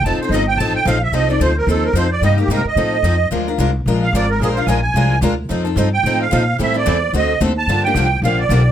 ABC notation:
X:1
M:4/4
L:1/8
Q:"Swing" 1/4=220
K:Fmix
V:1 name="Accordion"
a c e g a g f =e | e d c B A B c d | e G B e4- e | z4 z f d B |
(3_A c f _a a3 z2 | z3 g2 f3 | =e d3 _e2 z a- | a g3 f d3 |]
V:2 name="Steel-string acoustic guitar"
[F,CEA] [CEA] [F,CEA] z [F,CEA] z [F,CEA] z | [F,CEA] [CEA] [F,CEA] z [F,CEA] z [F,CEA] z | [C,G,B,EG] [B,EG] [C,G,B,EG] z [F,CEA] z [F,CEA] z | [F,_A,DFB] [DFB] [F,A,DFB] z [F,A,DFB] z [F,A,DFB] z |
[F,_A,DFB] [DFB] [F,A,DFB] z [F,A,DFB] z [F,A,DFB] z | [F,CEA] [CEA] [F,CEA] z [F,CEA] z [F,CEA] z | [=E,G,C=EA] [CEA] [E,G,CEA] z [D,A,C^FA] z [D,A,CFA] z | [D,F,B,DG] [B,DG] [D,F,B,DG] z [D,F,B,DG] z [D,F,B,DG] z |]
V:3 name="Steel-string acoustic guitar"
[F,CEA] z [F,CEA] z [F,CEA] z [F,CEA] z | [F,CEA] z [F,CEA] z [F,CEA] z [F,CEA] z | [C,G,B,EG] z [C,G,B,EG] z [F,CEA] z [F,CEA] z | [F,_A,DFB] z [F,A,DFB] z [F,A,DFB] z [F,A,DFB] z |
[F,_A,DFB] z [F,A,DFB] z [F,A,DFB] z [F,A,DFB] z | [F,CEA] z [F,CEA] z [F,CEA] z [F,CEA] z | [=E,G,C=EA] z [E,G,CEA] z [D,A,C^FA] z [D,A,CFA] z | [D,F,B,DG] z [D,F,B,DG] z [D,F,B,DG] z [D,F,B,DG] z |]
V:4 name="Upright bass" clef=bass
F,,, z G,,,2 A,,,2 B,,,2 | C,,2 D,,2 E,,2 F,,2 | G,,2 _A,, z =A,,2 F,,2 | D,,2 C,,2 B,,,2 _A,,,2 |
B,,,2 B,,,2 C,,2 D,,2 | F,,2 G,,2 A,,2 B,,2 | A,,2 =E,,2 D,,2 _E,,2 | G,,2 C,,2 B,,,2 =B,,,2 |]